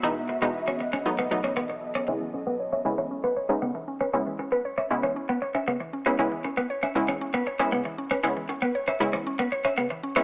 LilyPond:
<<
  \new Staff \with { instrumentName = "Clean electric guitar" } { \time 4/4 \key cis \minor \tempo 4 = 117 e'16 r8 b16 r16 cis'16 r16 cis'16 r16 b16 r16 cis'16 b16 r8 cis'16 | cis'16 r8 b16 r16 cis'16 r16 cis'16 r16 b16 r16 cis'16 b16 r8 cis'16 | cis'16 r8 b16 r16 cis'16 r16 cis'16 r16 b16 r16 cis'16 b16 r8 cis'16 | cis'16 r8 b16 r16 cis'16 r16 cis'16 r16 b16 r16 cis'16 b16 r8 cis'16 |
cis'16 r8 b16 r16 cis'16 r16 cis'16 r16 b16 r16 cis'16 b16 r8 cis'16 | }
  \new Staff \with { instrumentName = "Synth arpeggio sound" } { \time 4/4 \key cis \minor r1 | cis16 e16 cis'16 b'16 cis''16 e''16 cis16 e16 cis'16 b'16 cis''16 e''16 cis16 e16 cis'16 b'16 | cis16 e16 cis'16 b'16 cis''16 e''16 cis16 e16 cis'16 b'16 cis''16 e''16 cis16 e16 cis'16 b'16 | cis16 e16 cis'16 b'16 cis''16 e''16 cis16 e16 cis'16 b'16 cis''16 e''16 cis16 e16 cis'16 b'16 |
cis16 e16 cis'16 b'16 cis''16 e''16 cis16 e16 cis'16 b'16 cis''16 e''16 cis16 e16 cis'16 b'16 | }
  \new Staff \with { instrumentName = "Ambient pad" } { \time 4/4 \key cis \minor << { <b dis''>1 | r1 | r1 | r1 |
r1 | } \\ { <b, e gis'>2 <fis a'>2 | r1 | r1 | r1 |
r1 | } >> }
  \new Staff \with { instrumentName = "Synth pluck" } { \time 4/4 \key cis \minor <b, e gis b dis'>8 r16 <b, e gis b dis'>4~ <b, e gis b dis'>16 <fis a b dis'>8 <fis a b dis'>4~ <fis a b dis'>16 r16 | <gis b cis' e'>4~ <gis b cis' e'>16 r16 <gis b cis' e'>4 r16 <gis b cis' dis'>4 r16 | <gis b cis' e'>4~ <gis b cis' e'>16 r16 <gis b cis' e'>4. r8. <gis b cis' e'>16 | <gis b cis' e'>4~ <gis b cis' e'>16 r16 <gis b cis' e'>4 r16 <gis b cis' e'>4 r16 |
<gis b cis' e'>4~ <gis b cis' e'>16 r16 <gis b cis' e'>4. r8. <gis b cis' e'>16 | }
>>